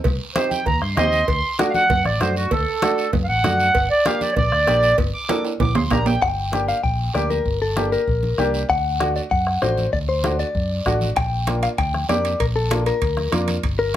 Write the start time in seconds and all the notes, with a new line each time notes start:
0.04 C2, bombo low, cowbell, high conga, low conga, long guiro
0.35 C4 D#4 G4 C5, bombo rim, cowbell, high conga, short guiro
0.50 G5, high conga, short guiro
0.66 D#2 A#5, bombo low, cowbell, high conga, low conga, long guiro
0.81 G2 C6, bombo rim
0.97 D#2 C4 D#4 G4 D#5 C6, bombo rim, cowbell, high conga, low conga, low timbale, short guiro
1.12 short guiro
1.28 D2, bombo low, cowbell, high conga, long guiro
1.59 A3 D4 F#4, bombo rim, cowbell, high conga, short guiro
1.70 F5
1.74 F#5, high conga, short guiro
1.90 F#2, bombo low, cowbell, high conga, low conga, long guiro
2.05 A1 D5, bombo rim, high conga
2.20 F#2 A3 D4 F#4 C5, bombo rim, cowbell, high conga, short guiro
2.36 F#4, short guiro
2.51 D2 A4, bombo low, cowbell, high conga, low conga, long guiro
2.82 A3 D4 F#4, bombo rim, cowbell, high conga, short guiro
2.98 short guiro
3.13 F#2, bombo low, cowbell, high conga, low conga, long guiro
3.24 F5
3.29 A1 F#5
3.44 F#2 A3 D4 F#4, bombo rim, cowbell, high conga, low conga, short guiro
3.60 short guiro
3.75 G1, bombo low, cowbell, high conga, long guiro
3.91 D5
4.05 A#3 D4 G4 F5, bombo rim, cowbell, high conga, short guiro
4.21 D5, high conga, short guiro
4.32 C#5
4.36 A#1 D5, bombo low, cowbell, high conga, low conga, long guiro
4.52 D2, bombo rim
4.67 A#1 A#3 D4 G4, bombo rim, cowbell, high conga, short guiro
4.83 short guiro
4.98 G1, bombo low, cowbell, high conga, low conga, long guiro
5.14 D6
5.29 A#3 D4 A4, bombo rim, cowbell, high conga, high timbale, short guiro
5.45 high timbale, short guiro
5.60 A#1 D6, bombo low, cowbell, high conga, low conga, high timbale, long guiro
5.75 D2 C6, bombo rim, high conga, low timbale
5.91 A#1 A#3 D4 G4 A#5, bombo low, bombo rim, cowbell, high conga, low conga, low timbale, short guiro
6.06 G5, low timbale, short guiro
6.22 G1 G5, bombo low, high conga, long guiro
6.52 A#3 D4 G4, bombo rim, high conga, short guiro
6.68 F5, short guiro
6.84 A#1 G5, bombo low, high conga, long guiro
7.15 D2 A#3 D4 G4 D5, bombo rim, high conga, short guiro
7.30 A#4, high conga, short guiro
7.46 G1, bombo low, high conga, long guiro
7.62 A4
7.77 A#3 D4 G4, bombo rim, high conga, short guiro
7.92 A#4, short guiro
8.07 A#1, bombo low, high conga, long guiro
8.23 high conga
8.38 C2 A#3 D4 G4, bombo rim, high conga, short guiro
8.54 short guiro
8.70 D2 F#5, bombo low, high conga, long guiro
9.00 A3 D4 F#4, bombo rim, high conga, short guiro
9.16 D5, short guiro
9.31 F#2 F#5, bombo low, high conga, long guiro
9.47 bombo rim
9.62 A1 A3 D4 F#4 C5, bombo rim, high conga, short guiro
9.78 high conga, short guiro
9.93 D2 D5, bombo low, high conga, long guiro
10.09 C5
10.24 A3 D4 F#4, bombo rim, high conga, short guiro
10.39 D5, short guiro
10.55 F#2, bombo low, high conga, long guiro
10.86 A1 A3 D4 F#4, bombo low, bombo rim, high conga, short guiro
11.01 high conga, short guiro
11.16 A#1 G5, bombo low, high conga, high timbale, long guiro
11.47 A#3 D4 F4, bombo rim, high conga, high timbale, short guiro
11.63 F5, high timbale, short guiro
11.78 D2 G5, bombo low, high conga, high timbale, long guiro
11.94 bombo rim, high conga
12.09 F2 A#3 D4 G4 D5, bombo rim, high conga, high timbale, low timbale, short guiro
12.25 high timbale, short guiro
12.40 A#1 A#4, bombo low, high conga, high timbale, long guiro
12.56 A4
12.71 A#3 D4 F4, bombo rim, high conga, high timbale, short guiro
12.86 A#4, high timbale, short guiro
13.02 D2, bombo low, high conga, high timbale, long guiro
13.17 bombo rim, high conga
13.32 F2 A#3 D4 F4, bombo rim, high conga, high timbale, short guiro
13.48 high conga, high timbale, short guiro
13.63 G1, bombo low, high conga, high timbale, long guiro
13.79 A#4